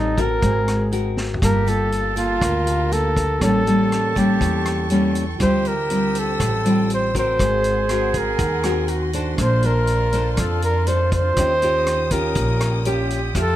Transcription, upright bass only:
0, 0, Header, 1, 2, 480
1, 0, Start_track
1, 0, Tempo, 497100
1, 1371, Time_signature, 4, 2, 24, 8
1, 13093, End_track
2, 0, Start_track
2, 0, Title_t, "Upright bass"
2, 0, Program_c, 0, 32
2, 0, Note_on_c, 0, 33, 91
2, 369, Note_off_c, 0, 33, 0
2, 411, Note_on_c, 0, 32, 105
2, 1333, Note_off_c, 0, 32, 0
2, 1371, Note_on_c, 0, 31, 87
2, 2294, Note_off_c, 0, 31, 0
2, 2331, Note_on_c, 0, 38, 92
2, 3254, Note_off_c, 0, 38, 0
2, 3297, Note_on_c, 0, 33, 96
2, 4217, Note_off_c, 0, 33, 0
2, 4257, Note_on_c, 0, 40, 102
2, 5178, Note_off_c, 0, 40, 0
2, 5217, Note_on_c, 0, 38, 80
2, 6138, Note_off_c, 0, 38, 0
2, 6178, Note_on_c, 0, 33, 105
2, 7099, Note_off_c, 0, 33, 0
2, 7137, Note_on_c, 0, 32, 81
2, 8058, Note_off_c, 0, 32, 0
2, 8099, Note_on_c, 0, 39, 93
2, 9019, Note_off_c, 0, 39, 0
2, 9060, Note_on_c, 0, 34, 91
2, 9979, Note_off_c, 0, 34, 0
2, 10017, Note_on_c, 0, 41, 101
2, 10937, Note_off_c, 0, 41, 0
2, 10977, Note_on_c, 0, 39, 87
2, 11897, Note_off_c, 0, 39, 0
2, 11932, Note_on_c, 0, 34, 91
2, 12854, Note_off_c, 0, 34, 0
2, 12888, Note_on_c, 0, 41, 87
2, 13093, Note_off_c, 0, 41, 0
2, 13093, End_track
0, 0, End_of_file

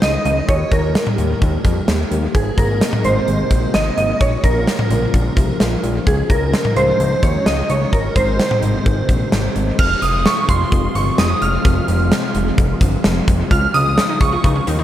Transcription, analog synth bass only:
0, 0, Header, 1, 2, 480
1, 0, Start_track
1, 0, Tempo, 465116
1, 503, Time_signature, 4, 2, 24, 8
1, 15312, End_track
2, 0, Start_track
2, 0, Title_t, "Analog synth bass"
2, 0, Program_c, 0, 38
2, 21, Note_on_c, 0, 37, 97
2, 190, Note_off_c, 0, 37, 0
2, 261, Note_on_c, 0, 37, 99
2, 430, Note_off_c, 0, 37, 0
2, 501, Note_on_c, 0, 39, 111
2, 670, Note_off_c, 0, 39, 0
2, 739, Note_on_c, 0, 39, 96
2, 992, Note_off_c, 0, 39, 0
2, 1221, Note_on_c, 0, 39, 105
2, 1390, Note_off_c, 0, 39, 0
2, 1463, Note_on_c, 0, 39, 101
2, 1631, Note_off_c, 0, 39, 0
2, 1700, Note_on_c, 0, 41, 93
2, 1869, Note_off_c, 0, 41, 0
2, 1942, Note_on_c, 0, 39, 92
2, 2110, Note_off_c, 0, 39, 0
2, 2181, Note_on_c, 0, 39, 97
2, 2350, Note_off_c, 0, 39, 0
2, 2422, Note_on_c, 0, 32, 106
2, 2590, Note_off_c, 0, 32, 0
2, 2659, Note_on_c, 0, 32, 98
2, 2912, Note_off_c, 0, 32, 0
2, 3142, Note_on_c, 0, 32, 100
2, 3310, Note_off_c, 0, 32, 0
2, 3382, Note_on_c, 0, 32, 101
2, 3550, Note_off_c, 0, 32, 0
2, 3619, Note_on_c, 0, 34, 92
2, 3789, Note_off_c, 0, 34, 0
2, 3862, Note_on_c, 0, 32, 105
2, 4030, Note_off_c, 0, 32, 0
2, 4103, Note_on_c, 0, 32, 99
2, 4271, Note_off_c, 0, 32, 0
2, 4342, Note_on_c, 0, 34, 102
2, 4510, Note_off_c, 0, 34, 0
2, 4579, Note_on_c, 0, 34, 93
2, 4832, Note_off_c, 0, 34, 0
2, 5061, Note_on_c, 0, 34, 104
2, 5229, Note_off_c, 0, 34, 0
2, 5304, Note_on_c, 0, 34, 104
2, 5471, Note_off_c, 0, 34, 0
2, 5539, Note_on_c, 0, 36, 88
2, 5708, Note_off_c, 0, 36, 0
2, 5781, Note_on_c, 0, 34, 100
2, 5949, Note_off_c, 0, 34, 0
2, 6021, Note_on_c, 0, 34, 101
2, 6189, Note_off_c, 0, 34, 0
2, 6261, Note_on_c, 0, 37, 112
2, 6430, Note_off_c, 0, 37, 0
2, 6499, Note_on_c, 0, 37, 92
2, 6752, Note_off_c, 0, 37, 0
2, 6981, Note_on_c, 0, 37, 99
2, 7149, Note_off_c, 0, 37, 0
2, 7221, Note_on_c, 0, 37, 99
2, 7390, Note_off_c, 0, 37, 0
2, 7460, Note_on_c, 0, 39, 92
2, 7629, Note_off_c, 0, 39, 0
2, 7702, Note_on_c, 0, 37, 102
2, 7870, Note_off_c, 0, 37, 0
2, 7942, Note_on_c, 0, 37, 95
2, 8110, Note_off_c, 0, 37, 0
2, 8182, Note_on_c, 0, 32, 107
2, 8350, Note_off_c, 0, 32, 0
2, 8419, Note_on_c, 0, 32, 96
2, 8672, Note_off_c, 0, 32, 0
2, 8902, Note_on_c, 0, 32, 97
2, 9070, Note_off_c, 0, 32, 0
2, 9143, Note_on_c, 0, 32, 109
2, 9311, Note_off_c, 0, 32, 0
2, 9380, Note_on_c, 0, 34, 91
2, 9549, Note_off_c, 0, 34, 0
2, 9622, Note_on_c, 0, 32, 101
2, 9790, Note_off_c, 0, 32, 0
2, 9862, Note_on_c, 0, 32, 97
2, 10030, Note_off_c, 0, 32, 0
2, 10102, Note_on_c, 0, 29, 105
2, 10270, Note_off_c, 0, 29, 0
2, 10342, Note_on_c, 0, 29, 100
2, 10594, Note_off_c, 0, 29, 0
2, 10822, Note_on_c, 0, 29, 98
2, 10990, Note_off_c, 0, 29, 0
2, 11064, Note_on_c, 0, 29, 110
2, 11231, Note_off_c, 0, 29, 0
2, 11302, Note_on_c, 0, 31, 95
2, 11470, Note_off_c, 0, 31, 0
2, 11542, Note_on_c, 0, 29, 106
2, 11710, Note_off_c, 0, 29, 0
2, 11783, Note_on_c, 0, 29, 101
2, 11951, Note_off_c, 0, 29, 0
2, 12022, Note_on_c, 0, 29, 111
2, 12190, Note_off_c, 0, 29, 0
2, 12263, Note_on_c, 0, 29, 103
2, 12515, Note_off_c, 0, 29, 0
2, 12743, Note_on_c, 0, 29, 104
2, 12911, Note_off_c, 0, 29, 0
2, 12984, Note_on_c, 0, 29, 103
2, 13152, Note_off_c, 0, 29, 0
2, 13219, Note_on_c, 0, 31, 96
2, 13388, Note_off_c, 0, 31, 0
2, 13463, Note_on_c, 0, 29, 107
2, 13631, Note_off_c, 0, 29, 0
2, 13703, Note_on_c, 0, 29, 101
2, 13871, Note_off_c, 0, 29, 0
2, 13942, Note_on_c, 0, 37, 109
2, 14110, Note_off_c, 0, 37, 0
2, 14182, Note_on_c, 0, 37, 100
2, 14434, Note_off_c, 0, 37, 0
2, 14662, Note_on_c, 0, 37, 101
2, 14830, Note_off_c, 0, 37, 0
2, 14903, Note_on_c, 0, 37, 114
2, 15071, Note_off_c, 0, 37, 0
2, 15142, Note_on_c, 0, 39, 99
2, 15311, Note_off_c, 0, 39, 0
2, 15312, End_track
0, 0, End_of_file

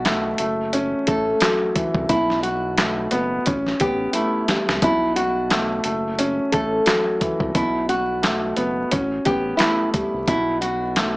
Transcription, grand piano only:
0, 0, Header, 1, 2, 480
1, 0, Start_track
1, 0, Tempo, 681818
1, 1475, Time_signature, 4, 2, 24, 8
1, 7862, End_track
2, 0, Start_track
2, 0, Title_t, "Grand piano"
2, 0, Program_c, 0, 0
2, 0, Control_c, 0, 64, 127
2, 0, Note_on_c, 0, 47, 93
2, 35, Note_on_c, 0, 57, 85
2, 266, Note_off_c, 0, 57, 0
2, 274, Note_off_c, 0, 47, 0
2, 277, Note_on_c, 0, 57, 83
2, 284, Control_c, 0, 64, 0
2, 411, Control_c, 0, 64, 127
2, 514, Note_on_c, 0, 61, 99
2, 746, Note_off_c, 0, 57, 0
2, 756, Note_on_c, 0, 57, 80
2, 994, Note_on_c, 0, 54, 89
2, 1232, Note_on_c, 0, 52, 80
2, 1473, Note_off_c, 0, 52, 0
2, 1474, Note_off_c, 0, 61, 0
2, 1475, Note_off_c, 0, 54, 0
2, 1475, Note_off_c, 0, 57, 0
2, 1475, Note_on_c, 0, 47, 86
2, 1484, Control_c, 0, 64, 0
2, 1598, Control_c, 0, 64, 127
2, 1952, Note_on_c, 0, 57, 79
2, 2192, Note_on_c, 0, 59, 89
2, 2433, Note_off_c, 0, 57, 0
2, 2433, Note_off_c, 0, 59, 0
2, 2435, Note_off_c, 0, 47, 0
2, 2437, Note_on_c, 0, 61, 93
2, 2444, Control_c, 0, 64, 0
2, 2576, Control_c, 0, 64, 127
2, 2681, Note_on_c, 0, 59, 80
2, 2922, Note_on_c, 0, 57, 85
2, 3160, Note_on_c, 0, 55, 74
2, 3394, Note_on_c, 0, 47, 96
2, 3396, Note_off_c, 0, 61, 0
2, 3397, Note_off_c, 0, 55, 0
2, 3398, Note_off_c, 0, 57, 0
2, 3398, Note_off_c, 0, 59, 0
2, 3404, Control_c, 0, 64, 0
2, 3528, Control_c, 0, 64, 127
2, 3876, Note_on_c, 0, 57, 84
2, 4106, Note_off_c, 0, 57, 0
2, 4114, Note_off_c, 0, 47, 0
2, 4117, Note_on_c, 0, 57, 83
2, 4125, Control_c, 0, 64, 0
2, 4257, Control_c, 0, 64, 127
2, 4356, Note_on_c, 0, 61, 99
2, 4586, Note_off_c, 0, 57, 0
2, 4597, Note_on_c, 0, 57, 79
2, 4833, Note_on_c, 0, 54, 90
2, 5071, Note_on_c, 0, 52, 76
2, 5313, Note_off_c, 0, 52, 0
2, 5314, Note_off_c, 0, 54, 0
2, 5315, Note_off_c, 0, 61, 0
2, 5316, Note_off_c, 0, 57, 0
2, 5316, Note_on_c, 0, 47, 86
2, 5324, Control_c, 0, 64, 0
2, 5439, Control_c, 0, 64, 127
2, 5792, Note_on_c, 0, 57, 85
2, 6032, Note_on_c, 0, 59, 89
2, 6273, Note_off_c, 0, 57, 0
2, 6273, Note_off_c, 0, 59, 0
2, 6275, Note_off_c, 0, 47, 0
2, 6277, Note_on_c, 0, 61, 96
2, 6284, Control_c, 0, 64, 0
2, 6397, Control_c, 0, 64, 127
2, 6520, Note_on_c, 0, 59, 81
2, 6761, Note_on_c, 0, 57, 85
2, 6998, Note_on_c, 0, 55, 73
2, 7236, Note_off_c, 0, 55, 0
2, 7236, Note_off_c, 0, 61, 0
2, 7236, Note_on_c, 0, 47, 93
2, 7238, Note_off_c, 0, 57, 0
2, 7238, Note_off_c, 0, 59, 0
2, 7244, Control_c, 0, 64, 0
2, 7362, Control_c, 0, 64, 127
2, 7716, Note_on_c, 0, 57, 85
2, 7862, Note_off_c, 0, 47, 0
2, 7862, Note_off_c, 0, 57, 0
2, 7862, End_track
0, 0, End_of_file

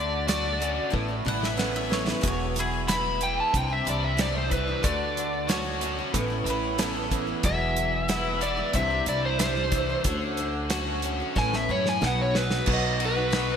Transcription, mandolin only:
0, 0, Header, 1, 2, 480
1, 0, Start_track
1, 0, Tempo, 652174
1, 1646, Time_signature, 4, 2, 24, 8
1, 9985, End_track
2, 0, Start_track
2, 0, Title_t, "Mandolin"
2, 0, Program_c, 0, 25
2, 943, Note_on_c, 0, 78, 95
2, 1048, Note_off_c, 0, 78, 0
2, 1068, Note_on_c, 0, 76, 79
2, 1169, Note_off_c, 0, 76, 0
2, 1172, Note_on_c, 0, 78, 75
2, 1282, Note_off_c, 0, 78, 0
2, 1295, Note_on_c, 0, 76, 74
2, 1403, Note_off_c, 0, 76, 0
2, 1419, Note_on_c, 0, 73, 71
2, 1525, Note_off_c, 0, 73, 0
2, 1546, Note_on_c, 0, 71, 77
2, 1648, Note_off_c, 0, 71, 0
2, 1674, Note_on_c, 0, 73, 86
2, 1893, Note_off_c, 0, 73, 0
2, 1906, Note_on_c, 0, 64, 75
2, 1914, Note_on_c, 0, 68, 89
2, 2119, Note_off_c, 0, 64, 0
2, 2133, Note_off_c, 0, 68, 0
2, 4052, Note_on_c, 0, 73, 83
2, 4745, Note_off_c, 0, 73, 0
2, 4783, Note_on_c, 0, 71, 70
2, 5006, Note_off_c, 0, 71, 0
2, 5023, Note_on_c, 0, 69, 85
2, 5245, Note_off_c, 0, 69, 0
2, 9985, End_track
0, 0, End_of_file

